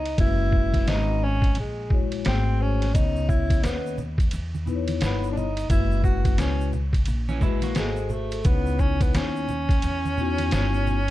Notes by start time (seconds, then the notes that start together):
Already playing: C#2 D#4
0.06 ride
0.17 F#1 G#3 C#4 E4 F#4 B4, kick, ride
0.52 kick
0.74 kick, snare, ride
0.87 G#1 D#4, snare, hi-hat pedal, ride
1.23 C#4
1.42 kick, ride
1.55 A#1, ride
1.59 G#3
1.90 G#3 E4 F#4 C#5, kick
2.12 ride
2.24 G#1 A3 C4 F#4 G#4 C5, snare, hi-hat pedal, ride
2.62 C#4
2.82 snare, ride
2.93 C#2 B3 C#4 D#4 C#5 D#5, kick, ride, shaker
3.16 shaker
3.29 E4, kick, shaker
3.50 kick, ride, shaker
3.63 D#2 B3, snare, hi-hat pedal, ride, shaker
3.87 shaker
3.98 low conga, shaker
4.18 kick, ride, shaker
4.31 E2, ride, shaker
4.55 high conga, shaker
4.65 B3 D#4 E4 B4, low conga, shaker
4.75 C#5
4.88 ride, high conga, shaker
5.01 G1 B3, snare, hi-hat pedal, ride, shaker
5.24 shaker
5.31 D4
5.36 D#4, low conga, shaker
5.57 ride, shaker
5.69 F#1 G#3 E4 F#4 B4, kick, ride, shaker
5.92 shaker
6.04 F#4, kick, shaker
6.25 kick, ride, shaker
6.38 C#2 C#4, snare, hi-hat pedal, ride, shaker
6.61 shaker
6.73 low conga, shaker
6.93 kick, ride, shaker
7.05 A#1, ride, shaker
7.29 E3 C#4, high conga, shaker
7.41 G#3 E4 F#4 B4, kick, low conga, shaker
7.62 A#3 F#4, ride, high conga, shaker
7.75 G#1 G#3 F#4 G#4 A4, snare, hi-hat pedal, ride, shaker
7.79 C5
7.96 shaker
8.10 A3, low conga, shaker
8.32 ride, shaker
8.45 C#2 B3 D#4 E4 C#5, kick, ride, shaker
8.66 shaker
8.79 C#4, kick, shaker
9.01 B3, kick, ride, shaker
9.14 D#2 C#4, snare, hi-hat pedal, ride, shaker
9.36 shaker
9.49 low conga, shaker
9.69 kick, ride, shaker
9.82 E2, ride, shaker
10.05 high conga, shaker
10.17 B3 D#4 E4 F#4, low conga, shaker
10.38 ride, high conga, shaker
10.51 G1, snare, hi-hat pedal, ride, shaker
10.74 shaker
10.87 low conga, shaker